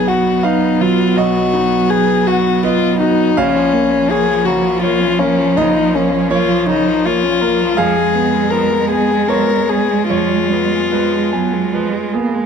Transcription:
0.00 1.13 B1 medium
0.00 3.34 F#3 medium
0.00 3.33 B3 medium
0.00 1.19 D#4 soft
0.00 0.29 B4 medium
0.00 0.40 D#5 medium
0.08 0.46 F#4 medium
0.08 0.66 F#5 medium
0.43 0.82 D#4 medium
0.43 1.02 B4 medium
0.43 1.13 F5 medium
0.81 1.39 F#3 medium
0.81 1.19 F4 medium
1.16 3.33 B1 medium
1.16 1.92 F#4 medium
1.16 1.87 D#5 loud
1.53 2.13 D#4 medium
1.90 2.29 G#4 medium
1.90 2.49 B4 medium
2.27 2.65 F#4 medium
2.27 2.87 F#5 medium
2.63 2.99 F4 medium
2.63 3.23 B4 medium
2.63 3.34 D#5 medium
2.99 3.39 D#4 medium
2.99 3.37 F#4 medium
3.37 5.53 A#1 medium
3.37 3.57 C#3 medium
3.37 7.75 F3 medium
3.37 4.12 C#4 medium
3.37 5.53 F5 loud
3.56 3.75 F3 medium
3.73 4.32 A#3 medium
3.73 3.93 A#3 medium
3.92 4.11 C#4 medium
4.09 4.29 A#3 medium
4.09 4.47 G#4 medium
4.09 4.68 C#5 medium
4.27 4.47 F3 medium
4.45 4.66 C#3 medium
4.45 4.82 F#4 medium
4.45 5.06 A#5 medium
4.65 4.84 F3 medium
4.82 5.03 A#3 medium
4.82 5.20 F4 medium
4.82 5.43 C#5 medium
5.02 5.21 C#4 medium
5.19 5.40 A#3 medium
5.19 5.58 C#4 medium
5.19 5.79 A#4 medium
5.38 5.56 F3 medium
5.57 7.74 A#1 medium
5.57 5.77 C#3 medium
5.57 5.97 D#4 medium
5.57 6.28 D#5 loud
5.76 5.95 F3 medium
5.94 6.14 A#3 medium
5.94 6.54 A#3 medium
5.94 6.32 C#4 medium
6.12 6.32 C#4 medium
6.30 6.51 A#3 medium
6.30 6.69 F4 medium
6.30 7.01 C#5 medium
6.50 6.69 F3 medium
6.68 6.89 C#3 medium
6.68 7.07 D#4 medium
6.68 7.27 A#5 medium
6.88 7.08 F3 medium
7.06 7.26 A#3 medium
7.06 7.79 F4 medium
7.06 7.64 C#5 medium
7.25 7.44 C#4 medium
7.41 7.63 A#3 medium
7.41 7.78 A#4 medium
7.62 7.78 F3 medium
7.77 10.06 F2 medium
7.77 7.98 F3 medium
7.77 10.80 G#3 medium
7.77 8.52 G#4 medium
7.77 9.25 F5 loud
7.97 8.17 G#3 medium
8.15 8.50 B3 medium
8.15 8.35 B3 medium
8.34 8.54 G#3 medium
8.51 8.73 F3 medium
8.51 9.14 B3 medium
8.51 8.89 A#4 medium
8.71 8.92 G#3 medium
8.89 9.12 B3 medium
8.89 9.30 G#4 medium
8.89 9.53 G#5 medium
9.11 9.31 G#3 medium
9.27 9.51 F3 medium
9.27 9.93 B3 medium
9.27 9.71 A#4 medium
9.27 10.06 C#5 medium
9.49 9.71 G#3 medium
9.69 9.91 B3 medium
9.69 10.35 G#4 soft
9.69 10.09 G#4 medium
9.89 10.09 G#3 soft
10.09 12.46 F2 medium
10.09 10.32 F3 medium
10.09 12.10 F4 medium
10.09 10.89 C#5 medium
10.31 10.52 G#3 soft
10.51 11.17 B3 soft
10.51 10.73 B3 soft
10.72 10.94 G#3 soft
10.90 11.14 F3 soft
10.90 11.34 G#3 medium
10.90 11.70 B4 medium
11.13 11.34 G#3 medium
11.32 11.74 F#3 medium
11.32 11.55 B3 soft
11.32 11.98 G#5 soft
11.53 11.75 G#3 soft
11.72 11.95 F3 medium
11.72 12.16 G#3 medium
11.72 12.39 B4 soft
11.93 12.16 G#3 soft
12.14 12.46 A#3 medium
12.14 12.36 B3 soft
12.14 12.46 G#4 soft
12.35 12.46 G#3 soft

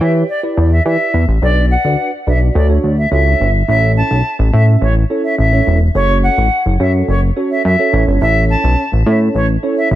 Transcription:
0.00 0.23 E3 medium
0.00 0.26 E4 medium
0.00 0.26 G4 medium
0.00 0.26 B4 medium
0.00 0.26 C#5 medium
0.00 0.12 E5 medium
0.29 0.40 D5 medium
0.43 0.68 E4 medium
0.43 0.68 G4 medium
0.43 0.68 B4 medium
0.43 0.68 D5 medium
0.57 0.80 E2 medium
0.71 0.83 E5 medium
0.85 0.97 E3 medium
0.85 1.19 E4 medium
0.85 1.19 G4 medium
0.85 1.19 B4 medium
0.85 1.19 D5 medium
0.85 1.26 E5 medium
1.14 1.25 E2 medium
1.28 1.39 A1 medium
1.42 1.76 B1 loud
1.42 1.67 D4 medium
1.42 1.67 F#4 medium
1.42 1.67 B4 medium
1.42 1.65 D5 loud
1.42 1.67 D5 medium
1.71 2.11 F#5 medium
1.84 1.96 D2 medium
1.84 2.10 D4 medium
1.84 2.10 F#4 medium
1.84 2.10 B4 medium
1.84 2.10 D5 medium
2.27 2.50 B1 medium
2.27 2.52 D4 medium
2.27 2.52 F#4 medium
2.27 2.52 B4 medium
2.27 2.52 D5 medium
2.27 2.39 E5 medium
2.55 2.78 D2 loud
2.55 2.66 D4 medium
2.55 2.67 F#4 medium
2.55 2.67 A4 medium
2.55 2.67 C#5 medium
2.55 2.67 D5 medium
2.69 2.94 D4 medium
2.69 2.94 F#4 medium
2.69 2.94 A4 medium
2.69 2.94 C#5 medium
2.83 3.06 D2 medium
2.98 3.10 E5 medium
3.11 3.34 C#2 medium
3.11 3.45 D4 medium
3.11 3.45 F#4 medium
3.11 3.45 A4 medium
3.11 3.45 C#5 medium
3.11 3.52 E5 medium
3.40 3.63 G1 loud
3.68 4.02 A1 loud
3.68 4.18 C#4 medium
3.68 4.18 E4 medium
3.68 4.18 A4 medium
3.68 4.19 C#5 medium
3.68 3.92 E5 loud
3.97 4.37 A5 medium
4.11 4.22 B1 medium
4.39 4.51 A1 loud
4.53 4.76 A2 medium
4.53 4.87 C#4 medium
4.53 4.87 E4 medium
4.53 4.87 A4 medium
4.53 4.87 E5 medium
4.53 4.65 E5 medium
4.82 5.04 A1 loud
4.82 4.93 C#5 medium
5.10 5.35 C#4 medium
5.10 5.35 E4 medium
5.10 5.35 A4 medium
5.10 5.35 C#5 medium
5.24 5.36 E5 medium
5.38 5.61 A1 medium
5.38 5.78 E5 medium
5.52 5.77 C#4 medium
5.52 5.77 E4 medium
5.52 5.78 A4 medium
5.52 5.78 C#5 medium
5.67 5.89 E1 medium
5.95 6.29 F#1 loud
5.95 6.45 C#4 medium
5.95 6.45 F#4 medium
5.95 6.45 A4 medium
5.95 6.18 C#5 loud
5.95 6.45 C#5 medium
6.23 6.63 F#5 medium
6.38 6.49 A1 medium
6.66 6.77 F#1 medium
6.80 7.02 F#2 loud
6.80 7.13 C#4 medium
6.80 7.13 F#4 medium
6.80 7.13 A4 medium
6.80 7.13 C#5 medium
6.80 6.92 E5 medium
7.08 7.31 F#1 medium
7.08 7.20 C#5 medium
7.36 7.61 C#4 medium
7.36 7.61 F#4 medium
7.36 7.61 A4 medium
7.36 7.62 C#5 medium
7.51 7.62 E5 medium
7.65 7.76 F#2 loud
7.65 8.05 E5 medium
7.79 7.92 C#4 medium
7.79 7.93 F#4 medium
7.79 7.92 A4 medium
7.79 7.92 C#5 medium
7.93 8.04 A1 loud
7.93 8.84 C#4 medium
7.93 8.84 E4 medium
7.93 8.84 A4 medium
7.93 8.84 C#5 medium
8.07 8.19 G1 medium
8.21 8.55 A1 loud
8.21 8.45 E5 loud
8.50 8.90 A5 medium
8.64 8.75 B1 medium
8.92 9.03 A1 loud
9.06 9.29 A2 loud
9.06 9.40 C#4 medium
9.06 9.40 E4 medium
9.06 9.40 A4 medium
9.06 9.40 C#5 medium
9.06 9.18 E5 medium
9.35 9.57 A1 loud
9.35 9.46 C#5 medium
9.63 9.88 C#4 medium
9.63 9.88 E4 medium
9.63 9.88 A4 medium
9.63 9.88 C#5 medium
9.78 9.89 E5 medium
9.91 9.95 A1 medium
9.91 9.95 E5 medium

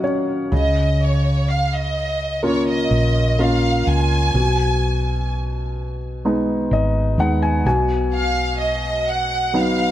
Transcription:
0.00 0.48 A#2 soft
0.00 0.49 F#3 soft
0.00 0.04 C#4 soft
0.00 0.50 C#4 soft
0.00 0.48 F#4 soft
0.00 0.48 C#5 soft
0.00 0.53 D#5 soft
0.00 0.54 F5 soft
0.00 0.54 F#5 medium
0.00 0.53 G#5 soft
0.00 0.54 A#5 medium
0.52 2.87 C#2 medium
0.52 4.31 C#3 medium
0.57 0.99 D#5 medium
1.02 1.49 C#5 medium
1.50 1.73 F5 medium
1.74 2.45 D#5 medium
2.43 3.36 A#3 soft
2.43 3.36 C#4 soft
2.43 3.36 F4 soft
2.43 2.67 C#5 medium
2.70 3.41 D#5 medium
2.91 3.83 A#1 medium
3.39 4.32 A#3 soft
3.39 4.32 C#4 soft
3.39 4.32 F4 soft
3.39 3.88 F5 medium
3.87 4.31 C#2 medium
3.87 5.31 G#5 medium
4.34 6.67 B1 medium
4.34 7.62 B2 medium
6.25 7.16 G#3 soft
6.25 7.16 B3 soft
6.25 7.16 D#4 soft
6.71 7.15 G#1 medium
6.71 7.16 D#5 medium
7.18 7.62 D#2 medium
7.18 7.65 G#3 soft
7.18 7.65 B3 soft
7.18 7.65 D#4 soft
7.18 7.41 F#5 medium
7.43 7.64 G#5 medium
7.65 9.91 B1 medium
7.65 9.91 B2 medium
7.65 8.10 G#5 medium
8.14 8.57 F5 medium
8.62 9.08 D#5 medium
9.09 9.55 F#5 medium
9.54 9.91 F#3 soft
9.54 9.91 B3 soft
9.54 9.91 D#4 soft
9.54 9.91 F5 medium

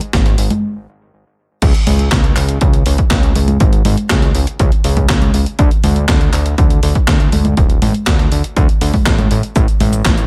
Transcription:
0.01 closed hi-hat soft
0.13 0.36 G#1 loud
0.13 kick loud
0.13 snare loud
0.13 closed hi-hat loud
0.26 snare soft
0.26 closed hi-hat soft
0.38 0.49 G#1 medium
0.38 open hi-hat loud
0.50 closed hi-hat soft
0.50 high conga medium
1.62 1.73 C#2 loud
1.62 kick loud
1.62 closed hi-hat medium
1.62 crash loud
1.74 closed hi-hat soft
1.87 2.09 C#2 medium
1.87 open hi-hat loud
1.87 high conga medium
1.99 closed hi-hat soft
2.12 2.34 C#2 medium
2.12 kick loud
2.12 snare loud
2.12 clap medium
2.12 closed hi-hat medium
2.24 closed hi-hat soft
2.36 2.59 C#2 medium
2.36 clap medium
2.36 open hi-hat loud
2.49 closed hi-hat soft
2.61 2.83 C#2 medium
2.61 kick loud
2.61 closed hi-hat medium
2.73 closed hi-hat soft
2.86 2.97 C#2 medium
2.86 open hi-hat loud
2.98 kick medium
2.98 closed hi-hat soft
3.11 3.33 C#2 medium
3.11 kick loud
3.11 snare loud
3.11 clap medium
3.11 closed hi-hat medium
3.23 closed hi-hat soft
3.36 3.58 C#2 medium
3.36 open hi-hat loud
3.36 high conga medium
3.48 closed hi-hat soft
3.48 high conga medium
3.60 3.83 G#1 medium
3.60 kick loud
3.60 closed hi-hat medium
3.73 closed hi-hat soft
3.85 3.96 G#1 loud
3.85 open hi-hat loud
3.85 high conga medium
3.97 closed hi-hat soft
4.10 4.32 C#2 loud
4.10 kick loud
4.10 snare loud
4.10 clap loud
4.10 closed hi-hat medium
4.22 snare soft
4.22 closed hi-hat soft
4.35 4.46 C#2 medium
4.35 open hi-hat loud
4.47 closed hi-hat soft
4.59 4.71 C#2 loud
4.59 kick loud
4.59 closed hi-hat medium
4.72 closed hi-hat soft
4.84 5.07 C#2 medium
4.84 open hi-hat loud
4.97 kick medium
4.97 closed hi-hat soft
4.97 high conga medium
5.09 5.31 C#2 medium
5.09 kick loud
5.09 snare loud
5.09 clap loud
5.09 closed hi-hat medium
5.22 closed hi-hat soft
5.22 high conga medium
5.34 5.45 C#2 medium
5.34 open hi-hat loud
5.46 closed hi-hat soft
5.59 5.70 D2 loud
5.59 kick loud
5.59 closed hi-hat medium
5.71 closed hi-hat soft
5.84 6.06 D2 medium
5.84 open hi-hat loud
5.84 high conga medium
5.96 closed hi-hat soft
6.08 6.30 D2 medium
6.08 kick loud
6.08 snare loud
6.08 clap loud
6.08 closed hi-hat medium
6.21 closed hi-hat soft
6.33 6.55 D2 medium
6.33 clap medium
6.33 open hi-hat loud
6.46 closed hi-hat soft
6.58 6.80 D2 medium
6.58 kick loud
6.58 closed hi-hat medium
6.70 closed hi-hat soft
6.83 6.94 D2 medium
6.83 open hi-hat loud
6.95 kick medium
6.95 closed hi-hat soft
7.08 7.30 D2 medium
7.08 kick loud
7.08 snare loud
7.08 clap medium
7.08 closed hi-hat medium
7.20 closed hi-hat soft
7.32 7.55 D2 medium
7.32 open hi-hat loud
7.32 high conga medium
7.45 closed hi-hat soft
7.45 high conga medium
7.57 7.79 D1 medium
7.57 kick loud
7.57 closed hi-hat medium
7.70 closed hi-hat soft
7.82 7.93 A1 loud
7.82 open hi-hat loud
7.82 high conga medium
7.94 closed hi-hat soft
8.07 8.29 D2 loud
8.07 kick loud
8.07 snare loud
8.07 clap medium
8.07 closed hi-hat medium
8.19 snare soft
8.19 closed hi-hat soft
8.32 8.43 D2 medium
8.32 open hi-hat loud
8.44 closed hi-hat soft
8.57 8.68 D2 loud
8.57 kick loud
8.57 closed hi-hat medium
8.69 closed hi-hat soft
8.81 8.92 D2 medium
8.81 open hi-hat loud
8.94 kick medium
8.94 open hi-hat medium
8.94 high conga medium
9.06 9.28 A1 medium
9.06 kick loud
9.06 snare loud
9.06 clap medium
9.06 closed hi-hat medium
9.18 closed hi-hat soft
9.18 high conga medium
9.31 9.42 A1 medium
9.31 open hi-hat loud
9.43 closed hi-hat soft
9.56 9.67 A1 loud
9.56 kick loud
9.56 closed hi-hat medium
9.56 cabasa medium
9.68 closed hi-hat soft
9.68 cabasa soft
9.80 10.03 A1 medium
9.80 open hi-hat loud
9.80 high conga medium
9.93 closed hi-hat soft
9.93 cabasa medium
10.05 10.27 A1 medium
10.05 kick loud
10.05 snare loud
10.05 clap medium
10.05 closed hi-hat medium
10.05 cabasa medium
10.18 closed hi-hat soft
10.18 cabasa soft

